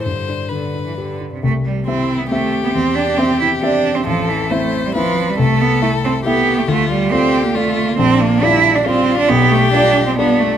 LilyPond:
<<
  \new Staff \with { instrumentName = "Violin" } { \time 3/4 \key c \major \tempo 4 = 136 c''4 b'4. r8 | r4 e'4 g'4~ | g'2. | a'4 c''4 b'4 |
a'2 g'4 | \key g \dorian f'4 g'4 f'4 | d'2 f'4 | g'2 d'4 | }
  \new Staff \with { instrumentName = "Grand piano" } { \time 3/4 \key c \major g,8 d'8 d8 d'8 g'8 d'8 | c,4 <c' g' e''>4 <c' g' e''>4 | e,4 <c' g' e''>4 <c' g' e''>4 | a,,4 <c' e' e''>4 <c' e' e''>4 |
c,4 <a e' e''>4 <a e' e''>4 | \key g \dorian d,4 <a f' d''>4 <a f' d''>4 | bes,,4 <g f' d''>4 <g f' d''>4 | b,,4 <g f' d''>4 <g f' d''>4 | }
  \new Staff \with { instrumentName = "Cello" } { \time 3/4 \key c \major d4 d8. e16 d8. c16 | a8 g8 c'8. b16 a8. b16 | c'8 d'8 c'8 e'8 d'8. c'16 | f8 e8 a8. g16 f8. g16 |
a8 b8 a8 c'8 b8. a16 | \key g \dorian a8 g8 c'8. bes16 a8. bes16 | c'8 bes8 e'8. d'16 c'8. d'16 | b8 a8 d'8. c'16 b8 a8 | }
>>